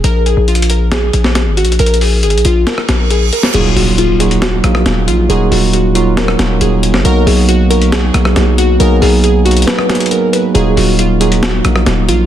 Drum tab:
CC |------------------------------------------------------------------------------------------------|------------------------------------------------------------------------------------------------|x-----------------------------------------------------------------------------------------------|------------------------------------------------------------------------------------------------|
HH |x-----------x-----------x---x---x---x-----------x-----------x-----------x-----------x---x---x---|x---x---x---o-----------x---x---x---x-----------x-----------x-----------x-----------x-----------|x-----------o-----------x-----------x-----x-----x-----------x-----------x-----------x-----------|x-----------o-----------x-----------x-----------x-----------x-----------x-----------x-----------|
SD |------------------------------------------------o-----------------o-----o-----------------------|------------------------------------------------o-----r-----o-----------------------------o-----|------------------------------------------------o-----------r-----r-----o-----------------------|------------------------------------------------o-----r-----o-----------------------------o-----|

CC |------------------------------------------------------------------------------------------------|------------------------------------------------------------------------------------------------|------------------------------------------------------------------------------------------------|
HH |x-----------o-----------x-----------x-----x-----x-----------x-----------x-----------x-----------|x-----------o-----------x-----------x--x--x--x--------------x--x--x--x--x-----------x-----------|x-----------o-----------x-----------x-----x-----x-----------x-----------x-----------x-----------|
SD |------------------------------------------------o-----------r-----r-----o-----------------------|------------------------------------------------o-----r-----o-----------------------------------|------------------------------------------------o-----------r-----r-----o-----------------------|